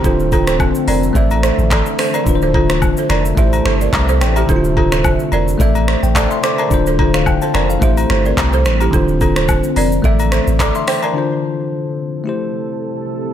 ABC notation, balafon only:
X:1
M:4/4
L:1/16
Q:"Swing 16ths" 1/4=108
K:Dm
V:1 name="Balafon"
[FA] z [FA] [Ac] z2 [Bd] z [Ae] z [Ac] z [Ad] z [Ac] [Bd] | z [Ac] [FA] z2 [Ac] [Bd] z [ce] z [Ac] [Bd] z [Ac] z [EG] | [FA] z [FA] [Ac] z2 [Bd] z [Ae] z [Ac] z [Ad] z [Ac] [Bd] | z [Ac] [FA] z2 [Ac] [Bd] z [ce] z [Ac] [Bd] z [Ac] z [EG] |
[FA] z [FA] [Ac] z2 [Bd] z [Ae] z [Ac] z [Ad] z [Ac] [Bd] | z16 |]